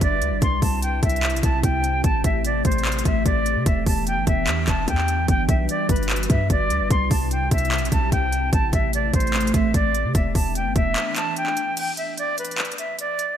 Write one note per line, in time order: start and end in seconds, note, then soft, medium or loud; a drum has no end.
0.00 0.23 G1 loud
0.00 0.40 G3 medium
0.00 0.40 D4 medium
0.00 0.40 F#4 medium
0.00 0.40 B4 loud
0.00 0.40 D5 loud
0.00 kick loud
0.00 closed hi-hat medium
0.22 0.33 D2 loud
0.22 closed hi-hat medium
0.32 0.41 G1 loud
0.42 0.61 C2 loud
0.42 2.02 C3 medium
0.42 3.63 C4 medium
0.42 2.02 E4 medium
0.42 5.24 G4 loud
0.42 0.60 C6 medium
0.42 kick loud
0.42 closed hi-hat medium
0.62 1.01 C2 loud
0.62 0.80 A5 medium
0.62 kick loud
0.62 open hi-hat medium
0.82 1.00 G5 medium
0.82 closed hi-hat medium
1.03 1.35 C2 loud
1.03 1.41 E5 medium
1.03 kick loud
1.03 closed hi-hat medium
1.09 closed hi-hat medium
1.16 closed hi-hat soft
1.23 clap loud
1.23 closed hi-hat soft
1.30 1.43 B1 loud
1.30 closed hi-hat medium
1.36 closed hi-hat medium
1.43 1.63 B1 loud
1.43 1.61 A5 medium
1.43 kick medium
1.43 closed hi-hat medium
1.63 2.02 C2 loud
1.63 2.01 G5 medium
1.63 kick loud
1.63 closed hi-hat medium
1.84 closed hi-hat medium
2.04 2.23 A1 loud
2.04 3.65 A3 medium
2.04 2.22 A5 loud
2.04 kick loud
2.04 closed hi-hat medium
2.24 2.63 A1 loud
2.24 2.42 E5 medium
2.24 kick loud
2.24 closed hi-hat medium
2.45 2.63 D5 medium
2.45 closed hi-hat medium
2.65 3.04 A1 loud
2.65 3.03 C5 medium
2.65 kick loud
2.65 closed hi-hat medium
2.72 closed hi-hat medium
2.78 closed hi-hat soft
2.85 clap loud
2.85 closed hi-hat soft
2.92 closed hi-hat medium
2.99 closed hi-hat medium
3.05 3.25 A1 loud
3.05 3.23 E5 medium
3.05 kick medium
3.05 closed hi-hat medium
3.25 3.58 A1 loud
3.25 3.64 D5 loud
3.25 kick medium
3.25 closed hi-hat medium
3.46 closed hi-hat medium
3.56 3.66 C3 loud
3.66 3.86 E1 loud
3.66 5.27 E3 medium
3.66 5.27 B3 medium
3.66 5.27 D4 medium
3.66 3.84 E5 medium
3.66 kick loud
3.66 closed hi-hat medium
3.86 4.18 E1 loud
3.86 4.04 A5 medium
3.86 kick loud
3.86 open hi-hat medium
4.07 4.25 G5 medium
4.07 closed hi-hat medium
4.17 4.27 G1 loud
4.27 4.49 E1 loud
4.27 4.65 E5 medium
4.27 kick loud
4.27 closed hi-hat medium
4.47 4.67 E2 loud
4.47 clap loud
4.47 closed hi-hat medium
4.68 4.87 E1 loud
4.68 4.85 A5 medium
4.68 kick loud
4.68 clap loud
4.68 closed hi-hat medium
4.88 5.27 E2 loud
4.88 5.26 G5 medium
4.88 kick medium
4.88 closed hi-hat medium
4.98 clap medium
5.08 closed hi-hat medium
5.28 5.48 G1 loud
5.28 6.89 G3 medium
5.28 6.89 D4 medium
5.28 6.89 F#4 medium
5.28 6.89 B4 loud
5.28 5.46 G5 loud
5.28 kick loud
5.28 closed hi-hat medium
5.48 5.68 B1 loud
5.48 5.66 E5 medium
5.48 kick loud
5.48 closed hi-hat medium
5.69 5.87 D5 loud
5.69 closed hi-hat medium
5.89 6.28 G1 loud
5.89 6.27 B4 medium
5.89 kick loud
5.89 closed hi-hat medium
5.96 closed hi-hat medium
6.03 closed hi-hat soft
6.09 clap loud
6.09 closed hi-hat soft
6.16 closed hi-hat medium
6.23 closed hi-hat medium
6.29 6.49 G2 loud
6.29 6.47 E5 medium
6.29 kick medium
6.29 closed hi-hat medium
6.50 6.72 G1 loud
6.50 6.88 D5 loud
6.50 kick loud
6.50 closed hi-hat medium
6.70 6.82 D2 loud
6.70 closed hi-hat medium
6.80 6.90 G1 loud
6.91 7.10 C2 loud
6.91 8.51 C3 medium
6.91 10.12 C4 medium
6.91 8.51 E4 medium
6.91 11.73 G4 loud
6.91 7.08 C6 medium
6.91 kick loud
6.91 closed hi-hat medium
7.11 7.50 C2 loud
7.11 7.29 A5 medium
7.11 kick loud
7.11 open hi-hat medium
7.31 7.49 G5 medium
7.31 closed hi-hat medium
7.51 7.83 C2 loud
7.51 7.90 E5 medium
7.51 kick loud
7.51 closed hi-hat medium
7.58 closed hi-hat medium
7.65 closed hi-hat soft
7.72 clap loud
7.72 closed hi-hat soft
7.78 7.91 B1 loud
7.78 closed hi-hat medium
7.85 closed hi-hat medium
7.92 8.11 B1 loud
7.92 8.10 A5 medium
7.92 kick medium
7.92 closed hi-hat medium
8.12 8.51 C2 loud
8.12 8.50 G5 medium
8.12 kick medium
8.12 closed hi-hat medium
8.32 closed hi-hat medium
8.53 8.72 A1 loud
8.53 10.13 A3 medium
8.53 8.70 A5 loud
8.53 kick loud
8.53 closed hi-hat medium
8.73 9.12 A1 loud
8.73 8.91 E5 medium
8.73 kick loud
8.73 closed hi-hat medium
8.93 9.11 D5 medium
8.93 closed hi-hat medium
9.13 9.52 A1 loud
9.13 9.52 C5 medium
9.13 kick loud
9.13 closed hi-hat medium
9.20 closed hi-hat medium
9.27 closed hi-hat soft
9.34 clap loud
9.34 closed hi-hat soft
9.41 closed hi-hat medium
9.47 closed hi-hat medium
9.54 9.74 A1 loud
9.54 9.72 E5 medium
9.54 kick loud
9.54 closed hi-hat medium
9.74 10.06 A1 loud
9.74 10.12 D5 loud
9.74 kick medium
9.74 closed hi-hat medium
9.95 closed hi-hat medium
10.05 10.14 C3 loud
10.14 10.34 E1 loud
10.14 11.75 E3 medium
10.14 11.75 B3 medium
10.14 11.75 D4 medium
10.14 10.32 E5 medium
10.14 kick loud
10.14 closed hi-hat medium
10.35 10.67 E1 loud
10.35 10.53 A5 medium
10.35 kick loud
10.35 open hi-hat medium
10.55 10.73 G5 medium
10.55 closed hi-hat medium
10.65 10.75 G1 loud
10.75 10.96 E1 loud
10.75 11.14 E5 medium
10.75 kick loud
10.75 closed hi-hat medium
10.96 clap loud
10.96 closed hi-hat medium
11.16 11.34 A5 medium
11.16 clap loud
11.16 closed hi-hat medium
11.36 11.75 G5 medium
11.36 closed hi-hat medium
11.47 clap medium
11.57 closed hi-hat medium
11.77 11.95 G5 medium
11.77 closed hi-hat medium
11.77 crash medium
11.97 12.15 E5 medium
11.97 closed hi-hat medium
12.18 12.35 D5 loud
12.18 closed hi-hat medium
12.38 12.76 B4 medium
12.38 closed hi-hat medium
12.45 closed hi-hat medium
12.51 closed hi-hat soft
12.58 clap loud
12.58 closed hi-hat soft
12.65 closed hi-hat medium
12.72 closed hi-hat medium
12.78 12.96 E5 medium
12.78 closed hi-hat medium
12.99 13.37 D5 loud
12.99 closed hi-hat medium
13.19 closed hi-hat medium